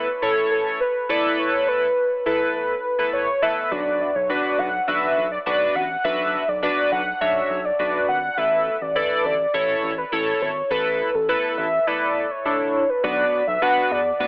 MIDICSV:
0, 0, Header, 1, 4, 480
1, 0, Start_track
1, 0, Key_signature, 2, "minor"
1, 0, Tempo, 582524
1, 1142, Time_signature, 4, 2, 24, 8
1, 11763, End_track
2, 0, Start_track
2, 0, Title_t, "Soft synth lead"
2, 0, Program_c, 0, 80
2, 0, Note_on_c, 0, 71, 92
2, 183, Note_on_c, 0, 69, 90
2, 195, Note_off_c, 0, 71, 0
2, 419, Note_off_c, 0, 69, 0
2, 424, Note_on_c, 0, 69, 79
2, 531, Note_off_c, 0, 69, 0
2, 662, Note_on_c, 0, 71, 89
2, 903, Note_on_c, 0, 74, 92
2, 915, Note_off_c, 0, 71, 0
2, 1142, Note_on_c, 0, 73, 102
2, 1154, Note_off_c, 0, 74, 0
2, 1383, Note_on_c, 0, 71, 100
2, 1396, Note_off_c, 0, 73, 0
2, 1858, Note_off_c, 0, 71, 0
2, 1863, Note_on_c, 0, 69, 81
2, 1971, Note_off_c, 0, 69, 0
2, 2102, Note_on_c, 0, 71, 88
2, 2549, Note_off_c, 0, 71, 0
2, 2581, Note_on_c, 0, 73, 98
2, 2820, Note_on_c, 0, 76, 99
2, 2832, Note_off_c, 0, 73, 0
2, 3059, Note_on_c, 0, 74, 104
2, 3072, Note_off_c, 0, 76, 0
2, 3421, Note_on_c, 0, 73, 94
2, 3433, Note_off_c, 0, 74, 0
2, 3539, Note_on_c, 0, 74, 108
2, 3552, Note_off_c, 0, 73, 0
2, 3780, Note_on_c, 0, 78, 104
2, 3792, Note_off_c, 0, 74, 0
2, 4014, Note_off_c, 0, 78, 0
2, 4019, Note_on_c, 0, 76, 112
2, 4356, Note_off_c, 0, 76, 0
2, 4381, Note_on_c, 0, 74, 89
2, 4435, Note_off_c, 0, 74, 0
2, 4501, Note_on_c, 0, 74, 100
2, 4740, Note_on_c, 0, 78, 105
2, 4752, Note_off_c, 0, 74, 0
2, 4977, Note_off_c, 0, 78, 0
2, 4982, Note_on_c, 0, 76, 115
2, 5343, Note_on_c, 0, 74, 97
2, 5355, Note_off_c, 0, 76, 0
2, 5458, Note_off_c, 0, 74, 0
2, 5463, Note_on_c, 0, 74, 101
2, 5686, Note_off_c, 0, 74, 0
2, 5703, Note_on_c, 0, 78, 100
2, 5926, Note_off_c, 0, 78, 0
2, 5943, Note_on_c, 0, 76, 110
2, 6302, Note_on_c, 0, 74, 92
2, 6315, Note_off_c, 0, 76, 0
2, 6418, Note_off_c, 0, 74, 0
2, 6423, Note_on_c, 0, 74, 100
2, 6646, Note_off_c, 0, 74, 0
2, 6663, Note_on_c, 0, 78, 101
2, 6903, Note_on_c, 0, 76, 114
2, 6915, Note_off_c, 0, 78, 0
2, 7263, Note_on_c, 0, 74, 97
2, 7276, Note_off_c, 0, 76, 0
2, 7382, Note_on_c, 0, 71, 98
2, 7394, Note_off_c, 0, 74, 0
2, 7623, Note_on_c, 0, 74, 98
2, 7636, Note_off_c, 0, 71, 0
2, 7863, Note_on_c, 0, 73, 100
2, 7875, Note_off_c, 0, 74, 0
2, 8218, Note_off_c, 0, 73, 0
2, 8223, Note_on_c, 0, 71, 84
2, 8344, Note_on_c, 0, 69, 87
2, 8356, Note_off_c, 0, 71, 0
2, 8584, Note_on_c, 0, 73, 91
2, 8596, Note_off_c, 0, 69, 0
2, 8824, Note_on_c, 0, 71, 97
2, 8836, Note_off_c, 0, 73, 0
2, 9183, Note_on_c, 0, 69, 84
2, 9196, Note_off_c, 0, 71, 0
2, 9299, Note_off_c, 0, 69, 0
2, 9304, Note_on_c, 0, 71, 99
2, 9526, Note_off_c, 0, 71, 0
2, 9541, Note_on_c, 0, 76, 94
2, 9782, Note_on_c, 0, 74, 100
2, 9794, Note_off_c, 0, 76, 0
2, 10143, Note_on_c, 0, 73, 96
2, 10155, Note_off_c, 0, 74, 0
2, 10624, Note_on_c, 0, 71, 80
2, 10637, Note_off_c, 0, 73, 0
2, 10739, Note_off_c, 0, 71, 0
2, 10743, Note_on_c, 0, 74, 107
2, 11078, Note_off_c, 0, 74, 0
2, 11103, Note_on_c, 0, 76, 102
2, 11224, Note_on_c, 0, 78, 121
2, 11236, Note_off_c, 0, 76, 0
2, 11465, Note_on_c, 0, 74, 99
2, 11477, Note_off_c, 0, 78, 0
2, 11763, Note_off_c, 0, 74, 0
2, 11763, End_track
3, 0, Start_track
3, 0, Title_t, "Analog polysynth"
3, 0, Program_c, 1, 90
3, 182, Note_on_c, 1, 64, 75
3, 183, Note_on_c, 1, 69, 70
3, 186, Note_on_c, 1, 73, 87
3, 660, Note_off_c, 1, 64, 0
3, 660, Note_off_c, 1, 69, 0
3, 662, Note_off_c, 1, 73, 0
3, 900, Note_on_c, 1, 64, 84
3, 902, Note_on_c, 1, 69, 78
3, 904, Note_on_c, 1, 71, 95
3, 1538, Note_off_c, 1, 64, 0
3, 1539, Note_off_c, 1, 69, 0
3, 1540, Note_off_c, 1, 71, 0
3, 1861, Note_on_c, 1, 64, 69
3, 1863, Note_on_c, 1, 69, 64
3, 1865, Note_on_c, 1, 71, 78
3, 2259, Note_off_c, 1, 64, 0
3, 2261, Note_off_c, 1, 69, 0
3, 2262, Note_off_c, 1, 71, 0
3, 2460, Note_on_c, 1, 64, 73
3, 2461, Note_on_c, 1, 69, 71
3, 2464, Note_on_c, 1, 71, 86
3, 2700, Note_off_c, 1, 64, 0
3, 2700, Note_off_c, 1, 69, 0
3, 2702, Note_off_c, 1, 71, 0
3, 2819, Note_on_c, 1, 64, 92
3, 2821, Note_on_c, 1, 69, 86
3, 2824, Note_on_c, 1, 71, 96
3, 3054, Note_off_c, 1, 71, 0
3, 3060, Note_on_c, 1, 62, 72
3, 3061, Note_off_c, 1, 64, 0
3, 3061, Note_on_c, 1, 66, 70
3, 3062, Note_off_c, 1, 69, 0
3, 3064, Note_on_c, 1, 71, 80
3, 3379, Note_off_c, 1, 62, 0
3, 3380, Note_off_c, 1, 66, 0
3, 3382, Note_off_c, 1, 71, 0
3, 3538, Note_on_c, 1, 62, 87
3, 3540, Note_on_c, 1, 66, 78
3, 3543, Note_on_c, 1, 71, 90
3, 3859, Note_off_c, 1, 62, 0
3, 3860, Note_off_c, 1, 66, 0
3, 3861, Note_off_c, 1, 71, 0
3, 4018, Note_on_c, 1, 62, 82
3, 4020, Note_on_c, 1, 66, 71
3, 4023, Note_on_c, 1, 71, 87
3, 4338, Note_off_c, 1, 62, 0
3, 4339, Note_off_c, 1, 66, 0
3, 4341, Note_off_c, 1, 71, 0
3, 4499, Note_on_c, 1, 62, 78
3, 4501, Note_on_c, 1, 66, 70
3, 4503, Note_on_c, 1, 71, 84
3, 4819, Note_off_c, 1, 62, 0
3, 4820, Note_off_c, 1, 66, 0
3, 4821, Note_off_c, 1, 71, 0
3, 4978, Note_on_c, 1, 62, 75
3, 4981, Note_on_c, 1, 66, 65
3, 4982, Note_on_c, 1, 71, 85
3, 5299, Note_off_c, 1, 62, 0
3, 5300, Note_off_c, 1, 66, 0
3, 5301, Note_off_c, 1, 71, 0
3, 5459, Note_on_c, 1, 62, 87
3, 5461, Note_on_c, 1, 66, 77
3, 5463, Note_on_c, 1, 71, 98
3, 5779, Note_off_c, 1, 62, 0
3, 5780, Note_off_c, 1, 66, 0
3, 5781, Note_off_c, 1, 71, 0
3, 5940, Note_on_c, 1, 62, 82
3, 5942, Note_on_c, 1, 66, 76
3, 5944, Note_on_c, 1, 73, 93
3, 6260, Note_off_c, 1, 62, 0
3, 6260, Note_off_c, 1, 66, 0
3, 6261, Note_off_c, 1, 73, 0
3, 6419, Note_on_c, 1, 62, 80
3, 6422, Note_on_c, 1, 66, 70
3, 6423, Note_on_c, 1, 71, 90
3, 6739, Note_off_c, 1, 62, 0
3, 6740, Note_off_c, 1, 66, 0
3, 6741, Note_off_c, 1, 71, 0
3, 6899, Note_on_c, 1, 64, 73
3, 6901, Note_on_c, 1, 69, 68
3, 6903, Note_on_c, 1, 71, 83
3, 7219, Note_off_c, 1, 64, 0
3, 7220, Note_off_c, 1, 69, 0
3, 7221, Note_off_c, 1, 71, 0
3, 7378, Note_on_c, 1, 64, 85
3, 7381, Note_on_c, 1, 69, 76
3, 7382, Note_on_c, 1, 74, 97
3, 7699, Note_off_c, 1, 64, 0
3, 7700, Note_off_c, 1, 69, 0
3, 7701, Note_off_c, 1, 74, 0
3, 7859, Note_on_c, 1, 64, 86
3, 7861, Note_on_c, 1, 69, 74
3, 7863, Note_on_c, 1, 73, 89
3, 8179, Note_off_c, 1, 64, 0
3, 8180, Note_off_c, 1, 69, 0
3, 8181, Note_off_c, 1, 73, 0
3, 8340, Note_on_c, 1, 64, 80
3, 8342, Note_on_c, 1, 69, 78
3, 8344, Note_on_c, 1, 73, 87
3, 8659, Note_off_c, 1, 64, 0
3, 8660, Note_off_c, 1, 69, 0
3, 8661, Note_off_c, 1, 73, 0
3, 8820, Note_on_c, 1, 64, 76
3, 8822, Note_on_c, 1, 69, 72
3, 8824, Note_on_c, 1, 71, 86
3, 9139, Note_off_c, 1, 64, 0
3, 9141, Note_off_c, 1, 69, 0
3, 9142, Note_off_c, 1, 71, 0
3, 9300, Note_on_c, 1, 64, 87
3, 9302, Note_on_c, 1, 69, 79
3, 9304, Note_on_c, 1, 71, 97
3, 9619, Note_off_c, 1, 64, 0
3, 9621, Note_off_c, 1, 69, 0
3, 9622, Note_off_c, 1, 71, 0
3, 9781, Note_on_c, 1, 64, 82
3, 9783, Note_on_c, 1, 69, 76
3, 9785, Note_on_c, 1, 71, 91
3, 10100, Note_off_c, 1, 64, 0
3, 10101, Note_off_c, 1, 69, 0
3, 10102, Note_off_c, 1, 71, 0
3, 10261, Note_on_c, 1, 64, 81
3, 10263, Note_on_c, 1, 69, 74
3, 10265, Note_on_c, 1, 62, 94
3, 10580, Note_off_c, 1, 64, 0
3, 10581, Note_off_c, 1, 69, 0
3, 10582, Note_off_c, 1, 62, 0
3, 10740, Note_on_c, 1, 59, 83
3, 10741, Note_on_c, 1, 62, 80
3, 10742, Note_on_c, 1, 66, 83
3, 10744, Note_on_c, 1, 71, 97
3, 11060, Note_off_c, 1, 59, 0
3, 11060, Note_off_c, 1, 62, 0
3, 11061, Note_off_c, 1, 66, 0
3, 11062, Note_off_c, 1, 71, 0
3, 11220, Note_on_c, 1, 59, 89
3, 11221, Note_on_c, 1, 62, 79
3, 11223, Note_on_c, 1, 66, 81
3, 11224, Note_on_c, 1, 71, 94
3, 11539, Note_off_c, 1, 59, 0
3, 11540, Note_off_c, 1, 62, 0
3, 11541, Note_off_c, 1, 66, 0
3, 11541, Note_off_c, 1, 71, 0
3, 11700, Note_on_c, 1, 59, 75
3, 11701, Note_on_c, 1, 62, 70
3, 11703, Note_on_c, 1, 66, 67
3, 11704, Note_on_c, 1, 71, 85
3, 11763, Note_off_c, 1, 59, 0
3, 11763, Note_off_c, 1, 62, 0
3, 11763, Note_off_c, 1, 66, 0
3, 11763, Note_off_c, 1, 71, 0
3, 11763, End_track
4, 0, Start_track
4, 0, Title_t, "Analog synth bass"
4, 0, Program_c, 2, 38
4, 3061, Note_on_c, 2, 35, 104
4, 3322, Note_off_c, 2, 35, 0
4, 3421, Note_on_c, 2, 35, 89
4, 3595, Note_off_c, 2, 35, 0
4, 3781, Note_on_c, 2, 35, 93
4, 3955, Note_off_c, 2, 35, 0
4, 4020, Note_on_c, 2, 35, 86
4, 4194, Note_off_c, 2, 35, 0
4, 4261, Note_on_c, 2, 35, 81
4, 4435, Note_off_c, 2, 35, 0
4, 4501, Note_on_c, 2, 35, 94
4, 4675, Note_off_c, 2, 35, 0
4, 4741, Note_on_c, 2, 33, 92
4, 4915, Note_off_c, 2, 33, 0
4, 4981, Note_on_c, 2, 35, 102
4, 5242, Note_off_c, 2, 35, 0
4, 5341, Note_on_c, 2, 35, 93
4, 5515, Note_off_c, 2, 35, 0
4, 5701, Note_on_c, 2, 35, 94
4, 5875, Note_off_c, 2, 35, 0
4, 5941, Note_on_c, 2, 35, 107
4, 6115, Note_off_c, 2, 35, 0
4, 6181, Note_on_c, 2, 35, 95
4, 6355, Note_off_c, 2, 35, 0
4, 6421, Note_on_c, 2, 35, 93
4, 6595, Note_off_c, 2, 35, 0
4, 6661, Note_on_c, 2, 32, 93
4, 6835, Note_off_c, 2, 32, 0
4, 6902, Note_on_c, 2, 33, 104
4, 7162, Note_off_c, 2, 33, 0
4, 7262, Note_on_c, 2, 33, 92
4, 7436, Note_off_c, 2, 33, 0
4, 7622, Note_on_c, 2, 33, 100
4, 7796, Note_off_c, 2, 33, 0
4, 7862, Note_on_c, 2, 33, 95
4, 8035, Note_off_c, 2, 33, 0
4, 8102, Note_on_c, 2, 33, 94
4, 8275, Note_off_c, 2, 33, 0
4, 8342, Note_on_c, 2, 33, 97
4, 8516, Note_off_c, 2, 33, 0
4, 8582, Note_on_c, 2, 32, 93
4, 8755, Note_off_c, 2, 32, 0
4, 8821, Note_on_c, 2, 33, 112
4, 9082, Note_off_c, 2, 33, 0
4, 9182, Note_on_c, 2, 33, 93
4, 9355, Note_off_c, 2, 33, 0
4, 9542, Note_on_c, 2, 33, 97
4, 9715, Note_off_c, 2, 33, 0
4, 10742, Note_on_c, 2, 35, 104
4, 10916, Note_off_c, 2, 35, 0
4, 11102, Note_on_c, 2, 35, 99
4, 11189, Note_off_c, 2, 35, 0
4, 11462, Note_on_c, 2, 40, 95
4, 11636, Note_off_c, 2, 40, 0
4, 11702, Note_on_c, 2, 38, 102
4, 11763, Note_off_c, 2, 38, 0
4, 11763, End_track
0, 0, End_of_file